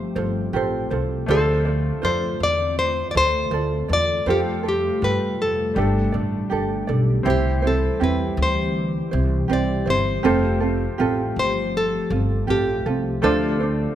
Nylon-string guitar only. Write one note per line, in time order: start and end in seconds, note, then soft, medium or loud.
0.00 0.88 C5 medium
1.31 2.07 A4 medium
2.05 2.42 C5 loud
2.43 2.78 D5 loud
2.79 3.08 C5 loud
3.11 3.16 D5 medium
3.17 3.93 C5 loud
3.93 4.26 D5 loud
4.30 4.40 G4 medium
4.68 5.05 G4 medium
5.04 5.42 B4 medium
5.42 6.86 A4 medium
7.30 7.63 G4 medium
7.67 8.00 A4 medium
8.04 8.41 B4 medium
8.43 9.48 C5 medium
9.53 9.90 D5 medium
9.90 11.38 C5 loud
11.39 11.76 C5 medium
11.77 12.50 A4 medium
12.50 13.05 G4 medium
13.24 13.95 A4 loud